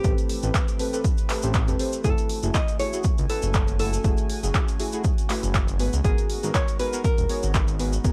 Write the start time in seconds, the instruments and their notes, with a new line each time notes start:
Already playing: ambient pad E3 A3 C4 G4, hollow-body jazz guitar G4
0.04 analog synth bass A1, synth stab C4 G4 A4 B4, ambient pad B4, kick, closed hi-hat, cabasa
0.18 closed hi-hat, cabasa
0.29 open hi-hat
0.43 analog synth bass A1, synth stab C4 G4 A4 B4, closed hi-hat, cabasa
0.54 kick, clap, closed hi-hat, cabasa
0.68 closed hi-hat, cabasa
0.79 synth stab C4 G4 A4 B4, open hi-hat
0.93 synth stab C4 G4 A4 B4, closed hi-hat, cabasa
1.04 kick, closed hi-hat, cabasa
1.18 closed hi-hat, cabasa
1.29 synth stab C4 G4 A4 B4, clap, open hi-hat
1.42 analog synth bass A1, synth stab C4 G4 A4 C5, closed hi-hat, cabasa
1.54 kick, clap, closed hi-hat, cabasa
1.68 analog synth bass E1, synth stab C4 G4 A4 B4, closed hi-hat, cabasa
1.79 synth stab C4 G4 A4 C5, open hi-hat
1.93 closed hi-hat, cabasa
2.04 analog synth bass F#1, synth stab A3 E4 F#4 A4, ambient pad C#4 F#4 G#5, hollow-body jazz guitar A4, kick, closed hi-hat, cabasa
2.18 closed hi-hat, cabasa
2.29 open hi-hat
2.43 analog synth bass F#1, synth stab A3 E4 F#4 G#4, closed hi-hat, cabasa
2.54 hollow-body jazz guitar D#5, kick, clap, closed hi-hat, cabasa
2.68 closed hi-hat, cabasa
2.79 synth stab A3 E4 F#4 G#4, hollow-body jazz guitar C#5, open hi-hat
2.93 synth stab A3 E4 F#4 G#4, closed hi-hat, cabasa
3.04 kick, closed hi-hat, cabasa
3.18 analog synth bass C#2, closed hi-hat, cabasa
3.29 synth stab A3 E4 F#4 B4, hollow-body jazz guitar A4, open hi-hat
3.42 analog synth bass F#1, closed hi-hat, cabasa
3.54 kick, clap, closed hi-hat, cabasa
3.68 closed hi-hat, cabasa
3.79 synth stab A3 E4 F#4 A4, hollow-body jazz guitar A4, open hi-hat
3.93 closed hi-hat, cabasa
4.04 analog synth bass F#1, synth stab A3 E4 F#4 G#4, kick, closed hi-hat, cabasa
4.17 closed hi-hat, cabasa
4.29 open hi-hat
4.43 analog synth bass F#1, synth stab A3 E4 F#4 G#4, closed hi-hat, cabasa
4.54 kick, clap, closed hi-hat, cabasa
4.68 closed hi-hat, cabasa
4.79 synth stab A3 E4 F#4 G#4, open hi-hat
4.92 synth stab A3 E4 F#4 G#4, closed hi-hat, cabasa
5.04 kick, closed hi-hat, cabasa
5.18 closed hi-hat, cabasa
5.29 synth stab A3 E4 F#4 B4, clap, open hi-hat
5.43 analog synth bass F#1, closed hi-hat, cabasa
5.54 kick, clap, closed hi-hat, cabasa
5.68 closed hi-hat, cabasa
5.79 analog synth bass G#1, ambient pad G#3 B3 D#4 A#4, synth stab B3 F#4 G#4 B4, open hi-hat
5.93 analog synth bass C#2, closed hi-hat, cabasa
6.04 analog synth bass G#1, synth stab B3 F#4 G#4 A#4, hollow-body jazz guitar G#4, kick, closed hi-hat, cabasa
6.18 closed hi-hat, cabasa
6.29 open hi-hat
6.43 analog synth bass G#1, synth stab B3 F#4 G#4 A#4, closed hi-hat, cabasa
6.54 hollow-body jazz guitar C#5, kick, clap, closed hi-hat, cabasa
6.68 closed hi-hat, cabasa
6.79 synth stab B3 F#4 G#4 A#4, hollow-body jazz guitar B4, open hi-hat
6.93 synth stab B3 F#4 G#4 A#4, closed hi-hat, cabasa
7.04 hollow-body jazz guitar A#4, kick, closed hi-hat, cabasa
7.18 analog synth bass D#1, closed hi-hat, cabasa
7.29 synth stab B3 F#4 G#4 C#5, open hi-hat
7.43 analog synth bass G#1, closed hi-hat, cabasa
7.54 kick, clap, closed hi-hat, cabasa
7.68 closed hi-hat, cabasa
7.79 synth stab B3 F#4 G#4 B4, ambient pad G#4, open hi-hat
7.93 closed hi-hat, cabasa
8.04 analog synth bass G#1, synth stab B3 F#4 G#4 A#4, kick, closed hi-hat, cabasa